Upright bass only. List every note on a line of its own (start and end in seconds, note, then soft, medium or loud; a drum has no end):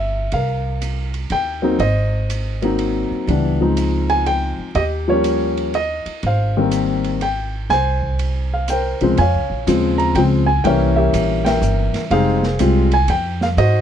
0.00 0.28 G1 medium
0.32 1.27 C2 medium
1.30 1.76 D#2 medium
1.79 3.07 G#1 medium
3.11 muted upright bass stroke soft
3.27 4.55 C#2 medium
4.58 muted upright bass stroke soft
4.75 6.02 D#2 medium
6.06 muted upright bass stroke soft
6.23 7.66 G#1 medium
7.70 8.96 C2 medium
9.01 9.16 C2 medium
9.18 9.36 F2 medium
9.34 9.49 C#2 medium
9.50 9.65 A#1 medium
9.67 10.14 D#2 medium
10.15 10.63 C#2 medium
10.64 11.12 C2 medium
11.13 11.61 A#1 medium
11.62 11.92 G1 medium
11.95 muted upright bass stroke soft
12.11 12.58 F1 medium
12.60 13.08 C2 medium
13.08 13.56 F2 medium
13.57 13.81 G#2 medium